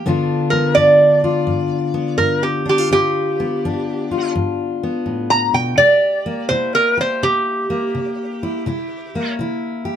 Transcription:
0.06 steel-string acoustic guitar G2 D3 B3 D4 F4
0.50 steel-string acoustic guitar B3, resonator guitar played with a steel bar A#4
0.75 steel-string acoustic guitar G2 D4, resonator guitar played with a steel bar D5
1.24 steel-string acoustic guitar F4
1.47 steel-string acoustic guitar G2
1.94 steel-string acoustic guitar B3
2.18 steel-string acoustic guitar G2, resonator guitar played with a steel bar A#4
2.43 resonator guitar played with a steel bar G4
2.66 steel-string acoustic guitar D4, resonator guitar played with a steel bar G4
2.78 steel-string acoustic guitar F4
2.91 steel-string acoustic guitar G2 F4, resonator guitar played with a steel bar G4
3.40 steel-string acoustic guitar B3
3.65 steel-string acoustic guitar G2 D4
4.11 steel-string acoustic guitar F4
4.36 steel-string acoustic guitar G2
4.83 steel-string acoustic guitar B3
5.06 steel-string acoustic guitar A2
5.30 resonator guitar played with a steel bar A#5
5.54 steel-string acoustic guitar B2, resonator guitar played with a steel bar G5
5.78 steel-string acoustic guitar C3 G4, resonator guitar played with a steel bar D5
6.26 steel-string acoustic guitar A#3
6.49 steel-string acoustic guitar C3 E4, resonator guitar played with a steel bar C5
6.75 resonator guitar played with a steel bar A#4
6.97 steel-string acoustic guitar G4, resonator guitar played with a steel bar C5
7.23 steel-string acoustic guitar C3, resonator guitar played with a steel bar G4
7.70 steel-string acoustic guitar A#3
7.95 steel-string acoustic guitar C3
8.43 steel-string acoustic guitar E4
8.66 steel-string acoustic guitar C3 E4
9.15 steel-string acoustic guitar A#3
9.39 steel-string acoustic guitar C3 E4
9.85 steel-string acoustic guitar G4

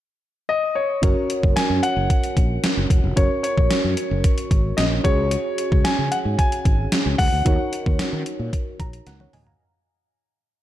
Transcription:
0.49 grand piano D#5
0.75 grand piano C#5
1.02 fretless electric bass F#1, fm electric piano C#4 F#4 A#4 C#5, kick, closed hi-hat
1.30 closed hi-hat
1.43 fretless electric bass F#1, kick
1.56 grand piano G#5, muted fretless electric bass stroke, snare, closed hi-hat
1.70 fretless electric bass F#2
1.83 grand piano F#5, closed hi-hat
1.97 fretless electric bass F#1
2.10 kick, closed hi-hat
2.24 closed hi-hat
2.37 fretless electric bass A#1, kick, closed hi-hat
2.64 snare, closed hi-hat
2.77 fretless electric bass F#1
2.90 fretless electric bass E1, kick, closed hi-hat
3.04 fretless electric bass F1
3.16 fretless electric bass F#1, fm electric piano C#4 F#4 A#4 C#5, grand piano C#5, kick, closed hi-hat
3.43 grand piano C#5, closed hi-hat
3.57 fretless electric bass A#1, kick
3.71 snare, closed hi-hat
3.84 fretless electric bass F#2
3.97 closed hi-hat
4.11 fretless electric bass F#1
4.24 kick, closed hi-hat
4.38 closed hi-hat
4.51 fretless electric bass G#1, kick, closed hi-hat
4.77 fretless electric bass A#1, grand piano D#5, snare, closed hi-hat
5.04 fretless electric bass C#2, fm electric piano C#4 F#4 G#4 C#5, grand piano C#5, kick, closed hi-hat
5.31 closed hi-hat
5.58 closed hi-hat
5.72 fretless electric bass C#2, kick
5.84 grand piano G#5, muted fretless electric bass stroke, snare, closed hi-hat
5.99 fretless electric bass C#3
6.11 grand piano F#5, closed hi-hat
6.25 fretless electric bass G#2
6.38 grand piano G#5, kick, closed hi-hat
6.52 closed hi-hat
6.65 fretless electric bass G#1, kick, closed hi-hat
6.92 snare, closed hi-hat
7.06 fretless electric bass C#2
7.18 fretless electric bass C#2, grand piano F#5, kick, open hi-hat
7.32 fretless electric bass D2
7.45 fretless electric bass D#2, fm electric piano D#4 F#4 A#4 C#5, kick, closed hi-hat
7.73 closed hi-hat
7.86 fretless electric bass D#2, kick
7.99 muted fretless electric bass stroke, snare, closed hi-hat
8.13 fretless electric bass D#3
8.26 closed hi-hat
8.39 fretless electric bass A#2
8.53 kick, closed hi-hat
8.79 fretless electric bass A#1, fm electric piano A#5, kick, closed hi-hat
8.93 closed hi-hat
9.06 fretless electric bass C#2, fm electric piano F#5, snare, closed hi-hat
9.20 fm electric piano C#5 F#5, high tom
9.33 fretless electric bass D2, fm electric piano D#5 G#5, mid tom, open hi-hat
9.47 fm electric piano F5 A#5, floor tom

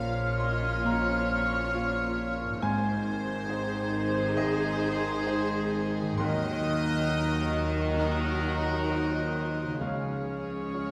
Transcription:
Already playing: grand piano A#1 A#2 A#3 F4 F5 C#6, double bass section A#1, timpani A#2, harp A#2 A#3 F4 F5, cello section A#2, french horn section F3 A#3, viola section C#4 F4, clarinet F4, violin section C#5 F5, cor anglais F5, flute F6
0.40 violin section D#5, grand piano C6
0.85 grand piano A#1 A#2 A#5, violin section C#5
1.74 grand piano A#3 F4 F5
2.44 harp G#2
2.49 harp D#4
2.53 harp G#4
2.58 double bass section G#1, cello section G#2, french horn section D#3 C4, harp C5, violin section C5, flute G#6
2.62 grand piano G#1 G#2 G#5, clarinet D#4, viola section D#4 G#4, cor anglais C5, violin section C5
3.49 grand piano D#4 G#4 C5
4.37 grand piano G#1 G#2 D#5, violin section G#4
5.26 grand piano D#4 G#4 C5
6.01 harp D#3
6.06 harp D#4
6.10 harp F#4
6.15 harp A#4, grand piano C6
6.19 grand piano D#2 D#3, double bass section D#2, cello section D#3, french horn section F#3 D#4, viola section D#4 F#4, clarinet D#4, violin section A#4 D#5, cor anglais A#4, flute F#6
7.09 grand piano D#4 F#4 A#4
7.97 grand piano D#2 D#3 A#5, clarinet D#4, cor anglais A#4, violin section D#5, flute F#6
8.89 grand piano D#4 F#4 A#4, cor anglais C5
9.63 harp C#3
9.68 harp G#3
9.72 harp F3
9.77 double bass section C#2, grand piano C#2 C#3, cello section C#3, french horn section G#3 C#4, cor anglais C#5, harp C#6
9.81 viola section G#3 C#4, clarinet C#4, violin section G#4 C#5, grand piano F5, flute F6
10.74 grand piano F4 G#4 C#5, flute F6

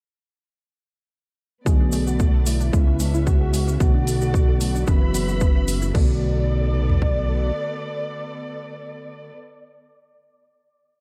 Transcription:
1.65 analog synth bass B1, reed electric piano D3 A3 B3 F#4, synth arpeggio sound A3, string section A3 B3 D5, analog synth lead G#4, kick, cabasa
1.80 synth arpeggio sound D4
1.92 synth arpeggio sound A3, open hi-hat, cabasa
2.07 synth arpeggio sound F#4, analog synth lead F#4, cabasa
2.19 synth arpeggio sound A3, kick, cabasa
2.34 synth arpeggio sound A4
2.46 synth arpeggio sound A3, analog synth lead E4, open hi-hat, cabasa
2.60 synth arpeggio sound D4, cabasa
2.72 analog synth bass C#2, reed electric piano C#3 G#3 B3 E4, synth arpeggio sound G#3, string section C#4 B4 E5, kick, cabasa
2.87 synth arpeggio sound C#4
3.00 synth arpeggio sound G#3, analog synth lead D4, open hi-hat, cabasa
3.14 synth arpeggio sound E4, analog synth lead E4, cabasa
3.26 synth arpeggio sound G#3, analog synth lead F#4, kick, cabasa
3.41 synth arpeggio sound G#4
3.53 synth arpeggio sound G#3, open hi-hat, cabasa
3.68 synth arpeggio sound C#4, cabasa
3.79 analog synth bass B1, reed electric piano D3 A3 B3 F#4, synth arpeggio sound A3, string section B3 A4 D5, analog synth lead F#4, kick, cabasa
3.94 synth arpeggio sound D4
4.07 synth arpeggio sound A3, open hi-hat, cabasa
4.21 synth arpeggio sound F#4, cabasa
4.34 synth arpeggio sound A3, kick, cabasa
4.48 synth arpeggio sound A4
4.60 synth arpeggio sound A3, open hi-hat, cabasa
4.75 synth arpeggio sound D4, cabasa
4.87 analog synth bass F#1, reed electric piano E3 B3 C#4 F#4, synth arpeggio sound B3, string section F#4 E5 B5, analog synth lead B4, kick, cabasa
5.02 synth arpeggio sound E4
5.14 synth arpeggio sound B3, open hi-hat, cabasa
5.28 synth arpeggio sound F#4, cabasa
5.40 synth arpeggio sound B3, kick, cabasa
5.56 synth arpeggio sound B4
5.68 synth arpeggio sound B3, open hi-hat, cabasa
5.82 synth arpeggio sound E4, cabasa
5.93 analog synth bass B1, reed electric piano D3 A3 B3 F#4, synth arpeggio sound A3, string section B3 A4 D5, analog synth lead D5, kick, crash
6.75 mid tom
6.89 floor tom
7.02 kick

